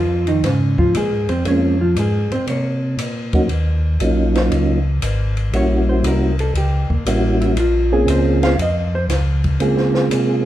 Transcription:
Already playing: F2 F3 F4
0.27 D#3 D#4, ride
0.43 G#2 C#3 C#4, snare, ride
0.78 F3 F4, kick
0.94 A#2 G#3 G#4, hi-hat pedal, ride
1.11 G#2
1.28 F2 C4 C5, ride
1.45 F2 G#3 A#3 C4 C#4 F4 C#5, ride
1.81 F3 F4
1.96 G#2 G#3 G#4, hi-hat pedal, ride
2.30 G#2 C4 C5, ride
2.47 C3 A#3 C#5, ride
2.97 A#2, hi-hat pedal, ride
3.33 F#3 A#3 C#4 D#4 F#4, kick, ride
3.48 D#2, ride
4.00 A#1 F#3 A#3 C#4 D#4 F4, hi-hat pedal, ride
4.35 snare, ride
4.50 C#2, ride
5.01 G#1, hi-hat pedal, ride
5.37 ride
5.52 A#1 G3 A#3 C#4 E4 F#4, ride
5.56 C#5
5.89 C5
6.03 C2, hi-hat pedal, ride
6.07 A#4
6.39 A4, ride
6.54 C#2 G4, ride
6.90 C#2 A#3, kick
7.05 A1 G3 A#3 C#4 E4 F#4, hi-hat pedal, ride
7.41 E4, ride
7.55 A#1, ride
7.59 F4
7.92 A#3 C4 C#4 F4 G#4
8.06 C#2 C5, hi-hat pedal, ride
8.43 F5, snare, ride
8.58 F2, ride
8.62 D#5
8.95 C5
9.09 C#2, snare, hi-hat pedal, ride
9.44 kick, ride
9.60 C#3 G#3 A#3 C4 F4 G#4, ride
9.77 snare
9.94 snare
10.10 C3, hi-hat pedal, ride

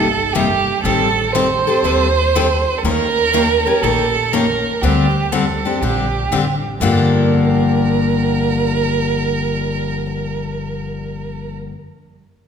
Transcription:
Already playing: G1 A4
0.33 C3 G3 A#3 D#4 G4
0.83 A1 D#3 G3 C4 G4 A4
1.33 D#3 G3 C4 G4 A4 C5
1.67 C4 G4 A4
1.83 D#2 D#3 G3 C4 G4 A4
2.35 D#3 G3 C4 G4 A4
2.78 A4
2.83 D#2 D#3 A#3 C#4 G4 A#4
3.33 D#3 A#3 C#4 G4 A#4
3.66 C#4 G4 A#4
3.82 A#1 D#3 A#3 C#4 G4 A4 A#4
4.33 D#3 A#3 C#4 G4 A#4
4.82 D2 D3 G3 C4 D4 G4
5.32 D3 G3 C4 D4 G4 A4
5.65 C4 D4 G4
5.81 A#1 D3 G3 C4 D4 G4
6.31 A1 D3 G3 C4 D4 G4
6.80 G1 G2 D3 F3 A#3 D4 G4 A#4

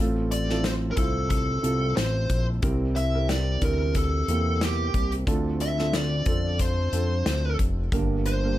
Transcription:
Already playing: C4 E4
0.00 A1 A2 A3 F4 A4
0.32 D5, closed hi-hat
0.49 C4 E4 F4 A4, snare
0.64 C5, snare, closed hi-hat
0.91 A#4
0.97 C2 C4 E4 F4 A4 C5, kick, closed hi-hat
1.30 A4, kick, closed hi-hat
1.62 C2 C4 E4 F4 A4, closed hi-hat
1.96 A1 C5, snare, closed hi-hat
2.30 A#1, kick, closed hi-hat
2.62 C2 C3 G3 C4 E4 G4 A#4, kick, closed hi-hat
2.96 E5, closed hi-hat
3.14 C4 E4 G4 A#4
3.29 D5, snare, closed hi-hat
3.61 D2 C4 E4 G4 A#4, kick, closed hi-hat
3.95 A4, kick, closed hi-hat
4.28 E2 A#3 C4 E4 G4, closed hi-hat
4.61 G4, snare, closed hi-hat
4.94 C2, kick, closed hi-hat
5.12 closed hi-hat
5.27 D2 D3 A3 C4 D4 F4 A4, kick, closed hi-hat
5.60 E5, closed hi-hat
5.78 C4 D4 F4 A4, snare
5.93 D5, snare, closed hi-hat
6.26 F2 C4 D4 F4 A4, kick, closed hi-hat
6.59 C5, kick, closed hi-hat
6.92 F2 C4 D4 F4 A4, closed hi-hat
7.26 D2, snare, closed hi-hat
7.59 F1, kick, closed hi-hat
7.92 G1 G2 D3 A#3 D4 G4 A#4, kick, closed hi-hat
8.26 C5, closed hi-hat
8.43 A#3 D4 G4 A#4

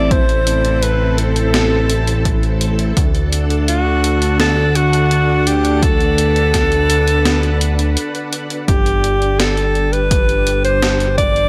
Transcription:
Already playing: A1 C4 E4 A4 D5
0.11 C5, kick, closed hi-hat
0.29 closed hi-hat
0.47 closed hi-hat
0.65 closed hi-hat
0.83 B4, closed hi-hat
1.18 A4, closed hi-hat
1.36 closed hi-hat
1.54 snare, closed hi-hat
1.90 closed hi-hat
2.07 closed hi-hat
2.25 kick, closed hi-hat
2.43 closed hi-hat
2.61 closed hi-hat
2.79 closed hi-hat
2.97 D2 D4 F#5, kick, closed hi-hat
3.15 closed hi-hat
3.33 closed hi-hat
3.50 closed hi-hat
3.68 F#4, closed hi-hat
4.04 closed hi-hat
4.22 closed hi-hat
4.40 A4, snare, closed hi-hat
4.75 F#4, closed hi-hat
4.93 closed hi-hat
5.11 closed hi-hat
5.47 G4, closed hi-hat
5.65 closed hi-hat
5.83 A4 B4, kick, closed hi-hat
6.00 closed hi-hat
6.18 closed hi-hat
6.36 closed hi-hat
6.54 kick, snare, closed hi-hat
6.72 closed hi-hat
6.90 closed hi-hat
7.08 closed hi-hat
7.25 snare, closed hi-hat
7.43 closed hi-hat
7.61 closed hi-hat
7.79 closed hi-hat
7.97 closed hi-hat
8.15 closed hi-hat
8.33 closed hi-hat
8.50 closed hi-hat
8.68 G1 D4 G4 D5, kick, closed hi-hat
8.86 closed hi-hat
9.04 closed hi-hat
9.22 closed hi-hat
9.39 A4, snare, closed hi-hat
9.57 closed hi-hat
9.75 closed hi-hat
9.92 B4, closed hi-hat
10.11 kick, closed hi-hat
10.29 closed hi-hat
10.47 closed hi-hat
10.64 C5, closed hi-hat
10.82 snare, closed hi-hat
11.00 closed hi-hat
11.18 D5, kick, closed hi-hat
11.36 closed hi-hat

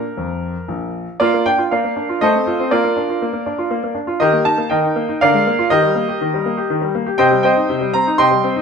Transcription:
Already playing: A#4
0.17 F2
0.68 A#1
1.20 A#3 F4 A#4 D5
1.34 A#3
1.46 D4 G5
1.58 F4
1.71 A#3 A#4 D5 F5
1.84 A#3
1.96 D4
2.09 F4
2.21 A3 A4 C5 D#5
2.35 C4
2.47 F4
2.59 C4
2.71 A#3 F4 A#4 D5
2.84 A#3
2.96 D4
3.09 F4
3.22 A#3
3.33 A#3
3.46 D4
3.58 F4
3.71 A#3
3.83 A#3
3.95 D4
4.07 F4
4.20 D#3 G4 A#4 D#5
4.33 A#3
4.45 D#4 A5
4.58 A#3
4.70 D#3 A#4 D#5 G5
4.84 D#4
4.96 A#3
5.09 D#4
5.21 D3 A#4 D5 F5
5.34 G#3
5.47 A#3
5.59 F4
5.70 D#3 G4 A#4 D#5
5.83 G3
5.95 A#3
6.09 G4
6.21 D#3
6.34 G3
6.46 A#3
6.57 G4
6.70 D#3
6.81 G3
6.95 A#3
7.06 G4
7.18 C3 C5 D#5 G5
7.31 G3
7.43 C4 C5 D#5 G5
7.56 D#4
7.69 C3
7.81 G3
7.93 C4 A#5
8.07 D#4
8.18 C3 D#5 G5 C6
8.31 G3
8.44 C4
8.56 D#4

